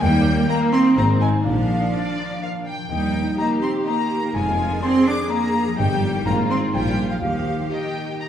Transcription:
Already playing: harp D#4 D#5 D#6
0.02 double bass section D#2, tuba D#2, harp D#3, cello section G3, viola section A#3, violin section G5, celesta G5
0.14 harp D#4
0.26 harp D#5
0.38 harp A#4
0.48 cello section A#3, violin section A#4 A#5, harp D#5, celesta A#5
0.61 harp D#6
0.73 cello section C4, celesta C6, violin section C6
0.86 harp D#6
0.96 tuba G#1, double bass section G#1, harp G#2, cello section A#3, viola section C4, violin section C5 A#5, celesta A#5
1.10 harp C4
1.21 cello section G#3, harp D#4, violin section G#5, celesta G#5
1.45 tuba A#1, double bass section A#1, harp A#2, cello section F3, viola section D4, violin section F5, celesta F5
1.57 harp A#3
1.69 harp D4
1.82 harp A#4
1.94 harp D4, violin section D5
2.06 harp D5
2.18 harp A#5
2.30 harp D5
2.42 harp A#4, violin section F5
2.54 harp D4
2.66 harp A#3, violin section G5
2.78 harp F3
2.90 double bass section D#2, tuba D#2, harp D#3, cello section G3, viola section D#4, celesta G5, violin section G5
3.03 harp D#4
3.15 harp A#4
3.27 harp D#4
3.38 cello section A#3, viola section G4, violin section D#5 A#5, harp D#5, celesta A#5
3.62 cello section C4, harp D#5, violin section C6, celesta C6
3.74 harp A#5
3.86 cello section A#3, harp D#5, violin section D#5 A#5, celesta A#5
3.98 harp A#4
4.11 harp D#4
4.23 harp A#3
4.34 tuba F1, double bass section F1, harp F2, cello section G#3, viola section F4, celesta G#5, violin section G#5
4.47 harp A#3
4.59 harp D4
4.72 harp A#4
4.82 cello section C4, harp D4, viola section G#4, violin section D5 C6, celesta C6
4.96 harp D5
5.06 cello section D4, harp A#5, celesta D6, violin section D6
5.20 harp D5
5.29 cello section A#3, harp A#4, violin section D5 A#5, celesta A#5
5.43 harp D4
5.55 harp A#3
5.67 harp F3
5.77 double bass section G1, tuba G1, harp G2, cello section G3, viola section G4, violin section D#5 G5, celesta G5
5.91 harp A#3
6.03 harp D#4
6.15 harp A#4
6.26 tuba G#1, double bass section G#1, harp G#2, cello section A#3, viola section F4, violin section F5 A#5, celesta A#5
6.38 harp C4
6.50 cello section C4, harp F4, celesta C6, violin section C6
6.62 harp G#4
6.73 tuba A#1, double bass section A#1, harp A#2, cello section G3, viola section F4, violin section G5 G#5, celesta G5
6.86 harp A#3
6.98 harp D4
7.10 cello section F3, harp G#4, violin section F5, celesta F5
7.22 double bass section D#2, tuba D#2, harp D#3, cello section F3, viola section G4, violin section F5, celesta F5
7.35 harp D#4
7.47 harp G4
7.60 harp A#4
7.71 cello section D#3, violin section D#5 G5, celesta D#5, harp D#5
7.84 harp G5
8.08 harp G5
8.20 harp D#5, violin section A#5

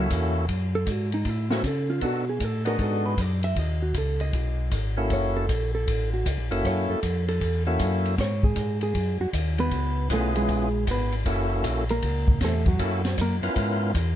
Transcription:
Already playing: tonewheel organ A#3 C#4 E4 F#4 A4
0.10 tonewheel organ E2, kick, hi-hat pedal, ride
0.48 tonewheel organ F#2, kick, ride
0.75 hollow-body jazz guitar A4
0.87 tonewheel organ G#2, kick, hi-hat pedal, ride
0.91 hollow-body jazz guitar F#4
1.12 hollow-body jazz guitar D#4, ride
1.25 tonewheel organ A2, kick, ride
1.29 hollow-body jazz guitar E4
1.50 tonewheel organ A#3 C#4 E4 F#4 A4, hollow-body jazz guitar F#4, snare
1.63 tonewheel organ C#3, kick, hi-hat pedal, ride
1.67 hollow-body jazz guitar A4
1.90 hollow-body jazz guitar F4
2.01 tonewheel organ B2 B3 D4 D#4 F#4 A4, hollow-body jazz guitar F#4, kick, ride
2.29 hollow-body jazz guitar G#4
2.40 tonewheel organ A2, kick, hi-hat pedal, ride
2.44 hollow-body jazz guitar A4
2.65 tonewheel organ B3 D4 D#4 F#4 G#4, hollow-body jazz guitar A#4, ride
2.79 tonewheel organ G#2, hollow-body jazz guitar A4, kick, ride
3.06 hollow-body jazz guitar B4
3.17 tonewheel organ F#2, hollow-body jazz guitar D5, kick, hi-hat pedal, ride
3.43 hollow-body jazz guitar E5, ride
3.56 tonewheel organ D#2, hollow-body jazz guitar D#5, kick, ride
3.82 hollow-body jazz guitar F#4
3.94 tonewheel organ C#2, hollow-body jazz guitar A4, kick, hi-hat pedal, ride
4.20 hollow-body jazz guitar D#5, ride
4.33 tonewheel organ B1, kick, ride
4.71 tonewheel organ G#1, kick, hi-hat pedal, ride
4.97 tonewheel organ A#3 C#4 E4 F#4 A4
5.10 tonewheel organ F#1, hollow-body jazz guitar C#5, kick, ride
5.37 hollow-body jazz guitar A4
5.49 tonewheel organ A#1, kick, hi-hat pedal, ride
5.75 hollow-body jazz guitar A4
5.87 tonewheel organ A1, kick, ride
6.14 hollow-body jazz guitar F#4
6.26 tonewheel organ C#2, kick, hi-hat pedal, ride
6.38 tonewheel organ A#1
6.51 tonewheel organ F#1 A#3 C#4 E4 F#4 A4, ride
6.64 tonewheel organ F#2, hollow-body jazz guitar C#5, kick, ride
6.89 tonewheel organ F#2, hollow-body jazz guitar A4
7.03 tonewheel organ F2, kick, hi-hat pedal, ride
7.28 hollow-body jazz guitar A4, ride
7.41 tonewheel organ E2, kick, ride
7.67 tonewheel organ A#3 C#4 E4 F#4 A4, hollow-body jazz guitar F#4
7.79 tonewheel organ F#2, kick, hi-hat pedal, ride
8.05 ride
8.18 tonewheel organ G#2, hollow-body jazz guitar C#5, kick, snare, ride
8.43 hollow-body jazz guitar G#4, kick
8.56 tonewheel organ G#2, kick, hi-hat pedal, ride
8.81 hollow-body jazz guitar G#4, ride
8.94 tonewheel organ F#2, kick, ride
9.20 tonewheel organ F#2, hollow-body jazz guitar F#4
9.33 tonewheel organ D#2, kick, hi-hat pedal, ride
9.58 hollow-body jazz guitar B3 B4, ride
9.71 tonewheel organ C#2, kick, ride
10.10 tonewheel organ B1 B3 C#4 E4 F4 G#4, hollow-body jazz guitar A3 A4, kick, hi-hat pedal, ride
10.35 hollow-body jazz guitar G#3 G#4, ride
10.49 tonewheel organ A#1, kick, ride
10.87 tonewheel organ G#1, kick, hi-hat pedal, ride
10.91 hollow-body jazz guitar B3 B4
11.12 ride
11.26 tonewheel organ F#1 A#3 C#4 E4 F#4 A4, kick, ride
11.64 tonewheel organ A#1, kick, hi-hat pedal, ride
11.89 hollow-body jazz guitar A#3 A#4, ride
12.02 tonewheel organ C#2, kick, ride
12.28 kick
12.41 tonewheel organ E2, hollow-body jazz guitar A4, kick, snare, hi-hat pedal, ride
12.45 hollow-body jazz guitar A3
12.66 hollow-body jazz guitar F#3 F#4, kick, ride
12.79 tonewheel organ F#2 A#3 C#4 E4 F#4 A4, kick, ride
13.05 snare, ride
13.18 tonewheel organ F#2, hollow-body jazz guitar A#3 A#4, kick, hi-hat pedal, ride
13.42 tonewheel organ F#2 B3 C#4 E4 F4 A#4, ride
13.56 tonewheel organ G#2, kick, ride
13.94 tonewheel organ E2, kick, hi-hat pedal, ride

